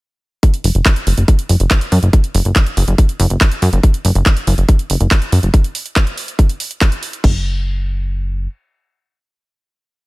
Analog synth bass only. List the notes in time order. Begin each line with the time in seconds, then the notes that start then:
0.64 F#1
0.75 F#1
1.07 F#1
1.18 F#1
1.49 F#1
1.60 F#1
1.92 F#2
2.03 F#1
2.35 F#1
2.45 F#1
2.77 F#1
2.88 F#1
3.20 F#1
3.30 F#1
3.62 F#2
3.73 F#1
4.05 F#1
4.15 F#1
4.47 F#1
4.58 F#1
4.90 F#1
5.00 F#1
5.32 F#2
5.43 F#1
7.24 F#1